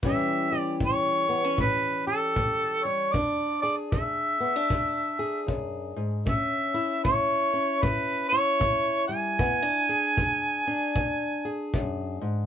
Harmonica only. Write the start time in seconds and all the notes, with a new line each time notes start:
0.05 E5
0.58 D5
0.85 C#5
1.61 B4
2.07 A4
2.85 C#5
3.13 D5
3.62 D5
3.91 E5
6.27 E5
7.04 C#5
7.82 B4
8.29 C#5
9.07 G#5